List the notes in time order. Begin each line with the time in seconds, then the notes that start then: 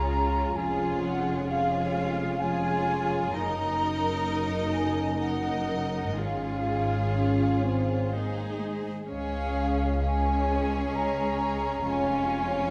Already playing: C#2 C#3 G#3 C#4 F4 G#4 C#5 A#5
0.56 F1 F2 F4 G#4 C#5 G#5
1.02 F#5
1.48 F4 G#4 C#5 F5
2.40 F4 G#4 C#5 G#5
3.32 F#1 F#2 A#3 D#4 A#4 D#5 A#5
4.70 G#5
5.17 D#4 A#4 D#5 F#5
6.14 G#1 G#2 G#3 C#4 F4 G#4 C#5 F5
7.13 C#4
7.61 C4
8.09 A#3 D#4 G#4 C5
8.58 G#3
9.05 C#2 G#3 C#4 G#4 C#5
9.09 F5
10.03 C#4 G#4 C#5 G#5
10.95 A#5
11.86 F1 F2 C#4 F4 C#5 G#5